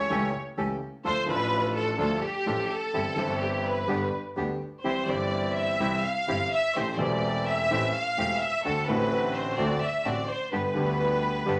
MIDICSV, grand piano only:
0, 0, Header, 1, 2, 480
1, 0, Start_track
1, 0, Key_signature, 0, "major"
1, 0, Tempo, 475436
1, 1052, Time_signature, 4, 2, 24, 8
1, 6824, Tempo, 470958
1, 11754, End_track
2, 0, Start_track
2, 0, Title_t, "Grand piano"
2, 0, Program_c, 0, 0
2, 100, Note_on_c, 0, 57, 63
2, 102, Note_on_c, 0, 52, 66
2, 104, Note_on_c, 0, 49, 70
2, 105, Note_on_c, 0, 37, 76
2, 105, Note_on_c, 0, 61, 61
2, 107, Note_on_c, 0, 67, 73
2, 301, Note_off_c, 0, 57, 0
2, 302, Note_off_c, 0, 52, 0
2, 303, Note_off_c, 0, 49, 0
2, 304, Note_off_c, 0, 37, 0
2, 304, Note_off_c, 0, 61, 0
2, 305, Note_off_c, 0, 67, 0
2, 579, Note_on_c, 0, 52, 46
2, 580, Note_on_c, 0, 37, 48
2, 582, Note_on_c, 0, 57, 38
2, 583, Note_on_c, 0, 49, 50
2, 584, Note_on_c, 0, 61, 37
2, 585, Note_on_c, 0, 67, 48
2, 777, Note_off_c, 0, 52, 0
2, 778, Note_off_c, 0, 37, 0
2, 779, Note_off_c, 0, 49, 0
2, 779, Note_off_c, 0, 57, 0
2, 780, Note_off_c, 0, 61, 0
2, 780, Note_off_c, 0, 67, 0
2, 1054, Note_on_c, 0, 57, 39
2, 1055, Note_on_c, 0, 50, 57
2, 1056, Note_on_c, 0, 38, 58
2, 1056, Note_on_c, 0, 62, 40
2, 1057, Note_on_c, 0, 53, 45
2, 1062, Note_on_c, 0, 69, 49
2, 1251, Note_off_c, 0, 57, 0
2, 1252, Note_off_c, 0, 50, 0
2, 1253, Note_off_c, 0, 38, 0
2, 1253, Note_off_c, 0, 53, 0
2, 1253, Note_off_c, 0, 62, 0
2, 1256, Note_off_c, 0, 69, 0
2, 1273, Note_on_c, 0, 53, 70
2, 1288, Note_on_c, 0, 57, 56
2, 1291, Note_on_c, 0, 45, 77
2, 1294, Note_on_c, 0, 33, 77
2, 1299, Note_on_c, 0, 62, 59
2, 1314, Note_on_c, 0, 69, 75
2, 1957, Note_off_c, 0, 53, 0
2, 1965, Note_off_c, 0, 57, 0
2, 1966, Note_off_c, 0, 45, 0
2, 1968, Note_off_c, 0, 33, 0
2, 1970, Note_off_c, 0, 62, 0
2, 1978, Note_off_c, 0, 69, 0
2, 1997, Note_on_c, 0, 50, 76
2, 1997, Note_on_c, 0, 57, 62
2, 1999, Note_on_c, 0, 38, 80
2, 1999, Note_on_c, 0, 53, 67
2, 2001, Note_on_c, 0, 62, 60
2, 2004, Note_on_c, 0, 69, 70
2, 2201, Note_off_c, 0, 50, 0
2, 2201, Note_off_c, 0, 57, 0
2, 2202, Note_off_c, 0, 38, 0
2, 2202, Note_off_c, 0, 53, 0
2, 2203, Note_off_c, 0, 62, 0
2, 2205, Note_off_c, 0, 69, 0
2, 2482, Note_on_c, 0, 53, 42
2, 2484, Note_on_c, 0, 57, 40
2, 2486, Note_on_c, 0, 33, 49
2, 2487, Note_on_c, 0, 45, 50
2, 2487, Note_on_c, 0, 62, 35
2, 2488, Note_on_c, 0, 69, 43
2, 2685, Note_off_c, 0, 53, 0
2, 2686, Note_off_c, 0, 57, 0
2, 2687, Note_off_c, 0, 33, 0
2, 2687, Note_off_c, 0, 45, 0
2, 2687, Note_off_c, 0, 62, 0
2, 2688, Note_off_c, 0, 69, 0
2, 2964, Note_on_c, 0, 52, 46
2, 2965, Note_on_c, 0, 67, 50
2, 2966, Note_on_c, 0, 60, 43
2, 2967, Note_on_c, 0, 31, 48
2, 2967, Note_on_c, 0, 43, 54
2, 2967, Note_on_c, 0, 55, 42
2, 3161, Note_off_c, 0, 52, 0
2, 3164, Note_off_c, 0, 67, 0
2, 3165, Note_off_c, 0, 31, 0
2, 3165, Note_off_c, 0, 43, 0
2, 3165, Note_off_c, 0, 60, 0
2, 3166, Note_off_c, 0, 55, 0
2, 3176, Note_on_c, 0, 52, 65
2, 3189, Note_on_c, 0, 55, 56
2, 3197, Note_on_c, 0, 31, 77
2, 3198, Note_on_c, 0, 43, 77
2, 3205, Note_on_c, 0, 60, 60
2, 3218, Note_on_c, 0, 67, 71
2, 3877, Note_off_c, 0, 52, 0
2, 3884, Note_off_c, 0, 55, 0
2, 3888, Note_off_c, 0, 31, 0
2, 3888, Note_off_c, 0, 43, 0
2, 3892, Note_off_c, 0, 60, 0
2, 3898, Note_off_c, 0, 67, 0
2, 3912, Note_on_c, 0, 55, 61
2, 3915, Note_on_c, 0, 43, 71
2, 3915, Note_on_c, 0, 50, 65
2, 3918, Note_on_c, 0, 31, 73
2, 3918, Note_on_c, 0, 59, 57
2, 3919, Note_on_c, 0, 67, 67
2, 4122, Note_off_c, 0, 55, 0
2, 4124, Note_off_c, 0, 43, 0
2, 4124, Note_off_c, 0, 50, 0
2, 4125, Note_off_c, 0, 59, 0
2, 4126, Note_off_c, 0, 31, 0
2, 4126, Note_off_c, 0, 67, 0
2, 4401, Note_on_c, 0, 50, 47
2, 4404, Note_on_c, 0, 59, 34
2, 4406, Note_on_c, 0, 38, 46
2, 4406, Note_on_c, 0, 55, 37
2, 4410, Note_on_c, 0, 67, 43
2, 4613, Note_off_c, 0, 50, 0
2, 4613, Note_off_c, 0, 59, 0
2, 4614, Note_off_c, 0, 38, 0
2, 4614, Note_off_c, 0, 55, 0
2, 4616, Note_off_c, 0, 67, 0
2, 4887, Note_on_c, 0, 55, 40
2, 4889, Note_on_c, 0, 36, 50
2, 4889, Note_on_c, 0, 48, 54
2, 4889, Note_on_c, 0, 52, 42
2, 4892, Note_on_c, 0, 60, 41
2, 4894, Note_on_c, 0, 67, 47
2, 5089, Note_off_c, 0, 52, 0
2, 5095, Note_off_c, 0, 55, 0
2, 5096, Note_off_c, 0, 36, 0
2, 5096, Note_off_c, 0, 48, 0
2, 5097, Note_off_c, 0, 60, 0
2, 5098, Note_off_c, 0, 67, 0
2, 5104, Note_on_c, 0, 52, 64
2, 5116, Note_on_c, 0, 55, 59
2, 5125, Note_on_c, 0, 43, 73
2, 5129, Note_on_c, 0, 31, 77
2, 5131, Note_on_c, 0, 60, 60
2, 5146, Note_on_c, 0, 67, 65
2, 5809, Note_off_c, 0, 52, 0
2, 5815, Note_off_c, 0, 55, 0
2, 5820, Note_off_c, 0, 43, 0
2, 5821, Note_off_c, 0, 31, 0
2, 5822, Note_off_c, 0, 60, 0
2, 5830, Note_off_c, 0, 67, 0
2, 5855, Note_on_c, 0, 48, 78
2, 5855, Note_on_c, 0, 52, 64
2, 5856, Note_on_c, 0, 55, 61
2, 5857, Note_on_c, 0, 36, 73
2, 5857, Note_on_c, 0, 60, 57
2, 5860, Note_on_c, 0, 67, 69
2, 6061, Note_off_c, 0, 36, 0
2, 6061, Note_off_c, 0, 48, 0
2, 6061, Note_off_c, 0, 52, 0
2, 6061, Note_off_c, 0, 55, 0
2, 6062, Note_off_c, 0, 60, 0
2, 6063, Note_off_c, 0, 67, 0
2, 6341, Note_on_c, 0, 31, 47
2, 6342, Note_on_c, 0, 52, 43
2, 6342, Note_on_c, 0, 55, 37
2, 6342, Note_on_c, 0, 60, 40
2, 6343, Note_on_c, 0, 43, 49
2, 6344, Note_on_c, 0, 67, 43
2, 6543, Note_off_c, 0, 31, 0
2, 6544, Note_off_c, 0, 52, 0
2, 6544, Note_off_c, 0, 55, 0
2, 6544, Note_off_c, 0, 60, 0
2, 6545, Note_off_c, 0, 43, 0
2, 6545, Note_off_c, 0, 67, 0
2, 6825, Note_on_c, 0, 52, 44
2, 6827, Note_on_c, 0, 57, 42
2, 6827, Note_on_c, 0, 60, 44
2, 6830, Note_on_c, 0, 45, 52
2, 6832, Note_on_c, 0, 33, 56
2, 6833, Note_on_c, 0, 67, 47
2, 7021, Note_off_c, 0, 52, 0
2, 7026, Note_off_c, 0, 57, 0
2, 7026, Note_off_c, 0, 60, 0
2, 7028, Note_off_c, 0, 45, 0
2, 7029, Note_off_c, 0, 33, 0
2, 7030, Note_off_c, 0, 67, 0
2, 7036, Note_on_c, 0, 52, 65
2, 7050, Note_on_c, 0, 57, 59
2, 7057, Note_on_c, 0, 40, 80
2, 7058, Note_on_c, 0, 28, 75
2, 7066, Note_on_c, 0, 60, 61
2, 7080, Note_on_c, 0, 67, 73
2, 7732, Note_off_c, 0, 52, 0
2, 7739, Note_off_c, 0, 57, 0
2, 7743, Note_off_c, 0, 28, 0
2, 7743, Note_off_c, 0, 40, 0
2, 7747, Note_off_c, 0, 60, 0
2, 7754, Note_off_c, 0, 67, 0
2, 7789, Note_on_c, 0, 57, 58
2, 7790, Note_on_c, 0, 52, 72
2, 7792, Note_on_c, 0, 45, 86
2, 7794, Note_on_c, 0, 60, 66
2, 7794, Note_on_c, 0, 67, 71
2, 7795, Note_on_c, 0, 33, 81
2, 7987, Note_off_c, 0, 57, 0
2, 7988, Note_off_c, 0, 45, 0
2, 7988, Note_off_c, 0, 52, 0
2, 7989, Note_off_c, 0, 60, 0
2, 7990, Note_off_c, 0, 33, 0
2, 7990, Note_off_c, 0, 67, 0
2, 8270, Note_on_c, 0, 52, 46
2, 8273, Note_on_c, 0, 57, 40
2, 8274, Note_on_c, 0, 28, 50
2, 8276, Note_on_c, 0, 40, 52
2, 8278, Note_on_c, 0, 60, 41
2, 8281, Note_on_c, 0, 67, 45
2, 8467, Note_off_c, 0, 52, 0
2, 8469, Note_off_c, 0, 28, 0
2, 8469, Note_off_c, 0, 57, 0
2, 8471, Note_off_c, 0, 40, 0
2, 8471, Note_off_c, 0, 60, 0
2, 8473, Note_off_c, 0, 67, 0
2, 8758, Note_on_c, 0, 50, 58
2, 8761, Note_on_c, 0, 57, 43
2, 8762, Note_on_c, 0, 66, 54
2, 8763, Note_on_c, 0, 38, 55
2, 8763, Note_on_c, 0, 60, 46
2, 8952, Note_off_c, 0, 50, 0
2, 8952, Note_off_c, 0, 57, 0
2, 8953, Note_off_c, 0, 38, 0
2, 8953, Note_off_c, 0, 60, 0
2, 8953, Note_off_c, 0, 66, 0
2, 8975, Note_on_c, 0, 50, 69
2, 8989, Note_on_c, 0, 57, 68
2, 8995, Note_on_c, 0, 33, 77
2, 8999, Note_on_c, 0, 45, 84
2, 9005, Note_on_c, 0, 60, 63
2, 9018, Note_on_c, 0, 66, 81
2, 9653, Note_off_c, 0, 50, 0
2, 9660, Note_off_c, 0, 57, 0
2, 9663, Note_off_c, 0, 33, 0
2, 9665, Note_off_c, 0, 45, 0
2, 9668, Note_off_c, 0, 60, 0
2, 9674, Note_off_c, 0, 66, 0
2, 9702, Note_on_c, 0, 50, 81
2, 9706, Note_on_c, 0, 57, 67
2, 9707, Note_on_c, 0, 38, 80
2, 9709, Note_on_c, 0, 60, 64
2, 9713, Note_on_c, 0, 66, 76
2, 9898, Note_off_c, 0, 57, 0
2, 9899, Note_off_c, 0, 38, 0
2, 9899, Note_off_c, 0, 60, 0
2, 9901, Note_off_c, 0, 50, 0
2, 9901, Note_off_c, 0, 66, 0
2, 10180, Note_on_c, 0, 50, 47
2, 10180, Note_on_c, 0, 57, 39
2, 10183, Note_on_c, 0, 45, 54
2, 10183, Note_on_c, 0, 60, 42
2, 10183, Note_on_c, 0, 66, 51
2, 10187, Note_on_c, 0, 33, 49
2, 10375, Note_off_c, 0, 50, 0
2, 10375, Note_off_c, 0, 57, 0
2, 10377, Note_off_c, 0, 45, 0
2, 10377, Note_off_c, 0, 60, 0
2, 10377, Note_off_c, 0, 66, 0
2, 10379, Note_off_c, 0, 33, 0
2, 10663, Note_on_c, 0, 50, 51
2, 10667, Note_on_c, 0, 55, 41
2, 10668, Note_on_c, 0, 31, 58
2, 10669, Note_on_c, 0, 43, 52
2, 10670, Note_on_c, 0, 59, 42
2, 10672, Note_on_c, 0, 67, 52
2, 10858, Note_off_c, 0, 50, 0
2, 10860, Note_off_c, 0, 55, 0
2, 10861, Note_off_c, 0, 31, 0
2, 10862, Note_off_c, 0, 43, 0
2, 10862, Note_off_c, 0, 59, 0
2, 10863, Note_off_c, 0, 67, 0
2, 10878, Note_on_c, 0, 50, 84
2, 10890, Note_on_c, 0, 55, 64
2, 10895, Note_on_c, 0, 38, 79
2, 10907, Note_on_c, 0, 59, 57
2, 10919, Note_on_c, 0, 67, 76
2, 11581, Note_off_c, 0, 55, 0
2, 11584, Note_off_c, 0, 38, 0
2, 11585, Note_off_c, 0, 50, 0
2, 11590, Note_off_c, 0, 59, 0
2, 11596, Note_off_c, 0, 67, 0
2, 11610, Note_on_c, 0, 50, 61
2, 11614, Note_on_c, 0, 55, 61
2, 11615, Note_on_c, 0, 59, 57
2, 11615, Note_on_c, 0, 67, 70
2, 11616, Note_on_c, 0, 43, 77
2, 11617, Note_on_c, 0, 31, 74
2, 11754, Note_off_c, 0, 31, 0
2, 11754, Note_off_c, 0, 43, 0
2, 11754, Note_off_c, 0, 50, 0
2, 11754, Note_off_c, 0, 55, 0
2, 11754, Note_off_c, 0, 59, 0
2, 11754, Note_off_c, 0, 67, 0
2, 11754, End_track
0, 0, End_of_file